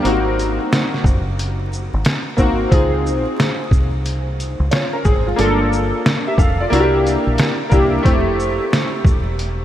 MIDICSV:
0, 0, Header, 1, 4, 480
1, 0, Start_track
1, 0, Tempo, 666667
1, 35, Time_signature, 4, 2, 24, 8
1, 6947, End_track
2, 0, Start_track
2, 0, Title_t, "Grand piano"
2, 0, Program_c, 0, 0
2, 17, Note_on_c, 0, 58, 85
2, 26, Note_on_c, 0, 60, 79
2, 35, Note_on_c, 0, 63, 79
2, 43, Note_on_c, 0, 66, 95
2, 870, Note_off_c, 0, 58, 0
2, 874, Note_off_c, 0, 60, 0
2, 879, Note_off_c, 0, 63, 0
2, 883, Note_off_c, 0, 66, 0
2, 1705, Note_on_c, 0, 58, 83
2, 1713, Note_on_c, 0, 60, 85
2, 1723, Note_on_c, 0, 63, 81
2, 1730, Note_on_c, 0, 66, 99
2, 1925, Note_off_c, 0, 58, 0
2, 1929, Note_off_c, 0, 60, 0
2, 1934, Note_off_c, 0, 63, 0
2, 1938, Note_off_c, 0, 66, 0
2, 1941, Note_on_c, 0, 60, 81
2, 1950, Note_on_c, 0, 63, 81
2, 1957, Note_on_c, 0, 65, 74
2, 1969, Note_on_c, 0, 68, 93
2, 2792, Note_off_c, 0, 60, 0
2, 2797, Note_off_c, 0, 63, 0
2, 2800, Note_off_c, 0, 65, 0
2, 2806, Note_off_c, 0, 68, 0
2, 3393, Note_on_c, 0, 73, 58
2, 3397, Note_on_c, 0, 65, 55
2, 3544, Note_off_c, 0, 73, 0
2, 3546, Note_off_c, 0, 65, 0
2, 3550, Note_on_c, 0, 70, 67
2, 3555, Note_on_c, 0, 61, 54
2, 3629, Note_off_c, 0, 70, 0
2, 3632, Note_off_c, 0, 61, 0
2, 3633, Note_on_c, 0, 68, 78
2, 3637, Note_on_c, 0, 60, 63
2, 3784, Note_off_c, 0, 68, 0
2, 3786, Note_off_c, 0, 60, 0
2, 3793, Note_on_c, 0, 65, 61
2, 3798, Note_on_c, 0, 56, 46
2, 3861, Note_on_c, 0, 58, 88
2, 3868, Note_off_c, 0, 65, 0
2, 3869, Note_on_c, 0, 62, 77
2, 3879, Note_on_c, 0, 65, 78
2, 3887, Note_on_c, 0, 69, 93
2, 4024, Note_off_c, 0, 56, 0
2, 4357, Note_off_c, 0, 65, 0
2, 4361, Note_off_c, 0, 69, 0
2, 4517, Note_on_c, 0, 76, 68
2, 4520, Note_on_c, 0, 67, 50
2, 4593, Note_off_c, 0, 76, 0
2, 4594, Note_off_c, 0, 67, 0
2, 4598, Note_on_c, 0, 77, 67
2, 4602, Note_on_c, 0, 69, 54
2, 4712, Note_off_c, 0, 58, 0
2, 4716, Note_off_c, 0, 62, 0
2, 4747, Note_off_c, 0, 77, 0
2, 4749, Note_off_c, 0, 69, 0
2, 4754, Note_on_c, 0, 74, 70
2, 4759, Note_on_c, 0, 65, 58
2, 4824, Note_on_c, 0, 58, 95
2, 4834, Note_on_c, 0, 62, 87
2, 4843, Note_on_c, 0, 64, 82
2, 4849, Note_on_c, 0, 66, 81
2, 4896, Note_on_c, 0, 67, 99
2, 4904, Note_off_c, 0, 66, 0
2, 4981, Note_off_c, 0, 74, 0
2, 4984, Note_off_c, 0, 65, 0
2, 5475, Note_off_c, 0, 58, 0
2, 5480, Note_off_c, 0, 62, 0
2, 5484, Note_off_c, 0, 64, 0
2, 5511, Note_off_c, 0, 67, 0
2, 5540, Note_on_c, 0, 58, 86
2, 5548, Note_on_c, 0, 62, 82
2, 5560, Note_on_c, 0, 64, 85
2, 5566, Note_on_c, 0, 67, 92
2, 5763, Note_off_c, 0, 58, 0
2, 5767, Note_off_c, 0, 62, 0
2, 5773, Note_off_c, 0, 64, 0
2, 5776, Note_off_c, 0, 67, 0
2, 5779, Note_on_c, 0, 57, 92
2, 5787, Note_on_c, 0, 60, 75
2, 5796, Note_on_c, 0, 64, 80
2, 5807, Note_on_c, 0, 67, 96
2, 6631, Note_off_c, 0, 57, 0
2, 6635, Note_off_c, 0, 60, 0
2, 6640, Note_off_c, 0, 64, 0
2, 6645, Note_off_c, 0, 67, 0
2, 6947, End_track
3, 0, Start_track
3, 0, Title_t, "Fingered electric bass"
3, 0, Program_c, 1, 33
3, 32, Note_on_c, 1, 32, 87
3, 414, Note_off_c, 1, 32, 0
3, 750, Note_on_c, 1, 30, 91
3, 1362, Note_off_c, 1, 30, 0
3, 1395, Note_on_c, 1, 32, 82
3, 1459, Note_off_c, 1, 32, 0
3, 1715, Note_on_c, 1, 32, 78
3, 1905, Note_off_c, 1, 32, 0
3, 1954, Note_on_c, 1, 37, 101
3, 2335, Note_off_c, 1, 37, 0
3, 2672, Note_on_c, 1, 36, 85
3, 3283, Note_off_c, 1, 36, 0
3, 3310, Note_on_c, 1, 37, 74
3, 3376, Note_off_c, 1, 37, 0
3, 3637, Note_on_c, 1, 32, 93
3, 3826, Note_off_c, 1, 32, 0
3, 3880, Note_on_c, 1, 31, 108
3, 4259, Note_off_c, 1, 31, 0
3, 4593, Note_on_c, 1, 29, 92
3, 4784, Note_off_c, 1, 29, 0
3, 4837, Note_on_c, 1, 36, 81
3, 5152, Note_off_c, 1, 36, 0
3, 5233, Note_on_c, 1, 34, 75
3, 5298, Note_off_c, 1, 34, 0
3, 5557, Note_on_c, 1, 36, 97
3, 5746, Note_off_c, 1, 36, 0
3, 5799, Note_on_c, 1, 29, 99
3, 6178, Note_off_c, 1, 29, 0
3, 6513, Note_on_c, 1, 28, 85
3, 6947, Note_off_c, 1, 28, 0
3, 6947, End_track
4, 0, Start_track
4, 0, Title_t, "Drums"
4, 37, Note_on_c, 9, 42, 78
4, 109, Note_off_c, 9, 42, 0
4, 284, Note_on_c, 9, 42, 47
4, 284, Note_on_c, 9, 82, 48
4, 356, Note_off_c, 9, 42, 0
4, 356, Note_off_c, 9, 82, 0
4, 523, Note_on_c, 9, 38, 106
4, 527, Note_on_c, 9, 42, 63
4, 595, Note_off_c, 9, 38, 0
4, 599, Note_off_c, 9, 42, 0
4, 678, Note_on_c, 9, 38, 33
4, 750, Note_off_c, 9, 38, 0
4, 751, Note_on_c, 9, 36, 81
4, 763, Note_on_c, 9, 82, 52
4, 823, Note_off_c, 9, 36, 0
4, 835, Note_off_c, 9, 82, 0
4, 1003, Note_on_c, 9, 42, 73
4, 1075, Note_off_c, 9, 42, 0
4, 1245, Note_on_c, 9, 82, 43
4, 1317, Note_off_c, 9, 82, 0
4, 1474, Note_on_c, 9, 42, 76
4, 1484, Note_on_c, 9, 38, 104
4, 1546, Note_off_c, 9, 42, 0
4, 1556, Note_off_c, 9, 38, 0
4, 1713, Note_on_c, 9, 82, 51
4, 1716, Note_on_c, 9, 36, 77
4, 1785, Note_off_c, 9, 82, 0
4, 1788, Note_off_c, 9, 36, 0
4, 1956, Note_on_c, 9, 36, 101
4, 1959, Note_on_c, 9, 42, 82
4, 2028, Note_off_c, 9, 36, 0
4, 2031, Note_off_c, 9, 42, 0
4, 2206, Note_on_c, 9, 82, 51
4, 2278, Note_off_c, 9, 82, 0
4, 2446, Note_on_c, 9, 38, 114
4, 2449, Note_on_c, 9, 42, 62
4, 2518, Note_off_c, 9, 38, 0
4, 2521, Note_off_c, 9, 42, 0
4, 2673, Note_on_c, 9, 36, 82
4, 2684, Note_on_c, 9, 82, 59
4, 2745, Note_off_c, 9, 36, 0
4, 2756, Note_off_c, 9, 82, 0
4, 2921, Note_on_c, 9, 42, 70
4, 2993, Note_off_c, 9, 42, 0
4, 3168, Note_on_c, 9, 42, 42
4, 3168, Note_on_c, 9, 82, 43
4, 3240, Note_off_c, 9, 42, 0
4, 3240, Note_off_c, 9, 82, 0
4, 3395, Note_on_c, 9, 42, 73
4, 3404, Note_on_c, 9, 38, 98
4, 3467, Note_off_c, 9, 42, 0
4, 3476, Note_off_c, 9, 38, 0
4, 3633, Note_on_c, 9, 82, 54
4, 3637, Note_on_c, 9, 36, 91
4, 3705, Note_off_c, 9, 82, 0
4, 3709, Note_off_c, 9, 36, 0
4, 3878, Note_on_c, 9, 42, 81
4, 3950, Note_off_c, 9, 42, 0
4, 4124, Note_on_c, 9, 82, 47
4, 4196, Note_off_c, 9, 82, 0
4, 4363, Note_on_c, 9, 38, 110
4, 4367, Note_on_c, 9, 42, 66
4, 4435, Note_off_c, 9, 38, 0
4, 4439, Note_off_c, 9, 42, 0
4, 4593, Note_on_c, 9, 36, 86
4, 4601, Note_on_c, 9, 82, 61
4, 4665, Note_off_c, 9, 36, 0
4, 4673, Note_off_c, 9, 82, 0
4, 4844, Note_on_c, 9, 42, 78
4, 4916, Note_off_c, 9, 42, 0
4, 5087, Note_on_c, 9, 42, 45
4, 5087, Note_on_c, 9, 82, 46
4, 5159, Note_off_c, 9, 42, 0
4, 5159, Note_off_c, 9, 82, 0
4, 5315, Note_on_c, 9, 42, 73
4, 5324, Note_on_c, 9, 38, 101
4, 5387, Note_off_c, 9, 42, 0
4, 5396, Note_off_c, 9, 38, 0
4, 5555, Note_on_c, 9, 82, 56
4, 5558, Note_on_c, 9, 36, 76
4, 5627, Note_off_c, 9, 82, 0
4, 5630, Note_off_c, 9, 36, 0
4, 5798, Note_on_c, 9, 36, 112
4, 5801, Note_on_c, 9, 42, 76
4, 5870, Note_off_c, 9, 36, 0
4, 5873, Note_off_c, 9, 42, 0
4, 6046, Note_on_c, 9, 82, 50
4, 6118, Note_off_c, 9, 82, 0
4, 6286, Note_on_c, 9, 38, 109
4, 6289, Note_on_c, 9, 42, 65
4, 6358, Note_off_c, 9, 38, 0
4, 6361, Note_off_c, 9, 42, 0
4, 6513, Note_on_c, 9, 36, 91
4, 6526, Note_on_c, 9, 82, 57
4, 6585, Note_off_c, 9, 36, 0
4, 6598, Note_off_c, 9, 82, 0
4, 6762, Note_on_c, 9, 42, 70
4, 6834, Note_off_c, 9, 42, 0
4, 6947, End_track
0, 0, End_of_file